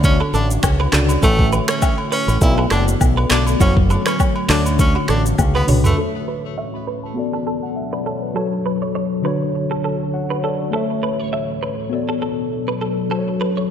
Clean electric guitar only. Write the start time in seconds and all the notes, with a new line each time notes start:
0.21 A4
0.34 A4
0.80 B4
0.93 A4
1.23 A4
1.53 B4
1.69 C#5
1.82 E5
2.12 B4
2.58 A4
2.71 A4
3.17 B4
3.31 A4
3.61 F#4
3.90 A4
4.07 B4
4.20 C#5
4.50 A4
4.96 F#4
5.09 A4
5.55 B4
5.69 C#5
5.98 A4
6.28 B4
6.44 C#5
6.58 E5
6.87 B4
7.33 A4
7.47 A4
7.93 B4
8.06 A4
8.36 A4
8.66 B4
8.82 C#5
8.95 C#5
9.25 B4
9.71 A4
9.84 A4
10.30 B4
10.44 A4
10.73 A4
11.03 B4
11.20 C#5
11.33 E5
11.63 B4
12.09 A4
12.22 A4
12.68 B4
12.81 A4
13.11 A4
13.41 B4
13.57 C#5